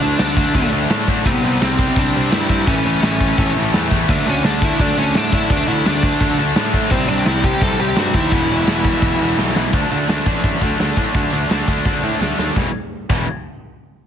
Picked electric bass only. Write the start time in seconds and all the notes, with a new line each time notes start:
0.02 D2
0.20 D2
0.54 D2
0.72 D2
0.90 A2
1.08 A2
1.25 C2
1.45 C2
1.62 C2
1.96 C2
2.15 C2
2.32 G2
2.49 G2
2.67 A1
2.85 A1
3.04 A1
3.38 A1
3.57 A1
3.74 E2
3.91 E2
4.09 D2
4.27 D2
4.44 D2
4.79 D2
4.98 D2
5.15 A2
5.32 A2
5.50 D2
5.69 D2
5.86 D2
6.21 D2
6.39 D2
6.56 A2
6.74 A2
6.91 C2
7.09 C2
7.26 C2
7.61 C2
7.79 C2
7.97 G2
8.14 D#2
8.32 E1
8.49 E1
8.67 E1
9.02 E1
9.20 E1
9.38 B1
9.56 B1
9.73 D2
9.92 D2
10.09 D2
10.26 A1
10.44 A1
10.62 D2
10.80 D2
10.97 A2
11.15 D2
11.33 D2
11.50 D2
11.68 D2
11.86 D2
12.03 A2
12.21 D2
12.39 D#2
12.57 E1
13.10 E1